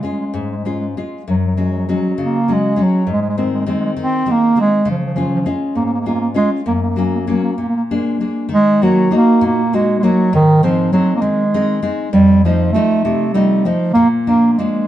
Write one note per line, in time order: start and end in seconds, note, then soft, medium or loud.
0.03 0.52 G#3 soft
0.03 0.53 C#4 soft
0.03 0.53 F4 soft
0.07 0.11 G#3 soft
0.12 0.18 G#3 soft
0.20 0.26 G#3 soft
0.26 0.33 G#3 soft
0.34 0.94 G#2 soft
0.34 0.42 G#3 soft
0.42 0.49 G#3 soft
0.51 0.56 G#3 soft
0.57 0.64 G#3 soft
0.64 0.71 G#3 soft
0.64 0.96 G#3 soft
0.64 0.96 C#4 soft
0.64 0.97 F4 soft
0.73 0.79 G#3 soft
0.80 0.86 G#3 soft
0.97 1.21 G#3 soft
0.97 1.21 C#4 soft
0.97 1.22 F4 soft
1.28 1.87 F#2 soft
1.28 1.36 F#3 medium
1.38 1.43 F#3 soft
1.47 1.52 F#3 soft
1.56 1.60 F#3 soft
1.56 1.88 F#3 soft
1.56 1.88 G#3 soft
1.56 1.88 C#4 soft
1.65 1.69 F#3 soft
1.72 1.76 F#3 soft
1.78 1.83 F#3 medium
1.87 1.91 F#3 soft
1.87 2.37 F#3 soft
1.87 2.38 G#3 soft
1.87 2.38 C#4 soft
1.96 1.99 F#3 soft
2.02 2.06 F#3 soft
2.10 2.13 F#3 medium
2.18 2.77 C#3 medium
2.23 2.55 A#3 medium
2.48 2.75 F#3 soft
2.48 2.75 G#3 soft
2.48 2.76 C#4 soft
2.53 2.84 G#3 medium
2.76 3.01 F#3 soft
2.76 3.01 G#3 soft
2.76 3.02 C#4 soft
2.83 3.11 F#3 medium
3.07 3.66 G#2 medium
3.12 3.18 G#3 medium
3.21 3.26 G#3 medium
3.29 3.33 G#3 medium
3.37 3.65 D#3 soft
3.37 3.66 G#3 soft
3.37 3.42 G#3 medium
3.37 3.66 C4 soft
3.45 3.49 G#3 medium
3.55 3.57 G#3 soft
3.61 3.64 G#3 medium
3.66 3.95 D#3 soft
3.66 4.15 G#3 soft
3.66 3.72 G#3 soft
3.66 4.16 C4 soft
3.74 3.78 G#3 medium
3.80 3.85 G#3 medium
3.85 3.91 G#3 medium
3.97 4.25 D#3 soft
4.02 4.33 C4 medium
4.26 4.54 D#3 soft
4.26 4.55 G#3 soft
4.26 4.56 C4 soft
4.31 4.59 A#3 medium
4.55 4.80 D#3 soft
4.55 4.80 G#3 soft
4.55 4.81 C4 soft
4.60 4.87 G#3 medium
4.85 5.44 C#3 medium
4.90 4.96 F3 medium
4.98 5.03 F3 soft
5.06 5.11 F3 medium
5.14 5.18 F3 medium
5.14 5.45 G#3 soft
5.14 5.45 C#4 soft
5.14 5.45 F4 soft
5.19 5.25 F3 medium
5.28 5.33 F3 medium
5.35 5.40 F3 medium
5.41 5.47 F3 medium
5.46 5.94 G#3 soft
5.46 5.94 C#4 soft
5.46 5.94 F4 soft
5.75 6.34 G#2 soft
5.75 5.83 A#3 medium
5.85 5.91 A#3 medium
5.93 5.99 A#3 medium
6.01 6.06 A#3 medium
6.06 6.33 G#3 soft
6.06 6.14 A#3 medium
6.06 6.34 C#4 soft
6.06 6.35 F4 soft
6.14 6.20 A#3 medium
6.20 6.28 A#3 medium
6.34 6.59 G#3 soft
6.34 6.50 G#3 medium
6.34 6.60 C#4 soft
6.34 6.60 F4 medium
6.66 7.26 F#2 medium
6.66 6.73 A#3 medium
6.74 6.81 A#3 medium
6.83 6.89 A#3 medium
6.90 6.97 A#3 soft
6.96 7.26 F#3 soft
6.96 7.26 A#3 soft
6.96 7.04 A#3 medium
6.96 7.26 C#4 soft
7.05 7.12 A#3 soft
7.15 7.20 A#3 medium
7.20 7.27 A#3 soft
7.27 7.52 F#3 soft
7.27 7.53 A#3 soft
7.27 7.35 A#3 soft
7.27 7.52 C#4 soft
7.36 7.43 A#3 soft
7.43 7.50 A#3 soft
7.52 7.58 A#3 soft
7.58 8.19 A#2 soft
7.58 7.67 A#3 medium
7.69 7.75 A#3 soft
7.76 7.82 A#3 soft
7.91 8.19 G#3 soft
7.91 8.20 A#3 soft
7.91 8.20 D4 soft
8.20 8.45 G#3 soft
8.20 8.46 A#3 soft
8.20 8.46 D4 soft
8.49 9.10 D#3 soft
8.54 8.84 G#3 loud
8.82 9.13 F#3 medium
8.82 9.09 A#3 soft
8.82 9.10 D#4 soft
8.82 9.11 F#4 soft
9.11 9.61 A#3 soft
9.11 9.61 D#4 soft
9.11 9.61 F#4 soft
9.16 9.43 A#3 medium
9.41 10.02 A#2 medium
9.46 9.76 A#3 medium
9.73 9.98 G#3 medium
9.73 10.02 A#3 soft
9.73 10.02 D#4 soft
9.73 10.03 F#4 soft
9.99 10.05 G#3 medium
9.99 10.28 A#3 medium
10.03 10.34 F#3 medium
10.03 10.28 D#4 soft
10.03 10.28 F#4 soft
10.33 10.92 G#2 medium
10.33 10.63 D#3 medium
10.63 10.92 F3 medium
10.63 10.91 G#3 medium
10.63 10.93 C4 soft
10.63 10.92 D#4 soft
10.93 11.15 F#3 medium
10.93 11.42 G#3 soft
10.93 11.42 C4 soft
10.93 11.42 D#4 soft
11.16 11.23 A#3 medium
11.21 11.82 D#3 soft
11.21 11.91 G#3 medium
11.54 11.81 G#3 medium
11.54 11.81 C4 soft
11.54 11.82 D#4 medium
11.82 12.08 G#3 soft
11.82 12.07 C4 soft
11.82 12.08 D#4 medium
12.13 12.73 F2 medium
12.13 12.42 G3 loud
12.44 12.72 F3 medium
12.44 12.73 F3 soft
12.44 12.74 A3 soft
12.44 12.74 D#4 soft
12.72 13.24 F3 soft
12.72 13.02 A3 medium
12.72 13.24 A3 soft
12.72 13.24 D#4 medium
13.04 13.64 C3 medium
13.04 13.33 A3 medium
13.33 13.64 F3 soft
13.33 13.67 G3 medium
13.33 13.64 A3 soft
13.33 13.65 D#4 medium
13.65 13.90 F3 soft
13.65 13.93 F3 medium
13.65 13.90 A3 soft
13.65 13.91 D#4 medium
13.93 14.56 A#2 medium
13.93 14.08 A#3 medium
14.26 14.58 F3 soft
14.26 14.49 A#3 medium
14.26 14.58 A#3 soft
14.26 14.59 D4 soft
14.53 14.60 A#3 soft
14.58 14.88 F3 soft
14.58 14.88 G#3 medium
14.58 14.88 A#3 soft
14.58 14.88 D4 soft